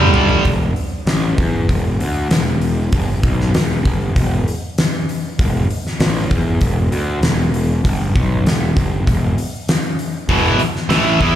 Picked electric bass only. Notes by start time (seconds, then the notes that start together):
Already playing: G1
0.45 E1
0.75 muted picked electric bass stroke
1.06 A1
1.37 E2
1.69 E1
2.00 D2
2.29 E1
2.93 G1
3.23 B1
3.53 E1
3.85 G1
4.16 E1
5.39 E1
5.69 muted picked electric bass stroke
6.00 A1
6.30 E2
6.61 E1
6.91 D2
7.21 E1
7.84 G1
8.15 B1
8.45 E1
8.77 G1
9.06 E1
10.28 E1
10.58 muted picked electric bass stroke
10.89 A1
11.20 E2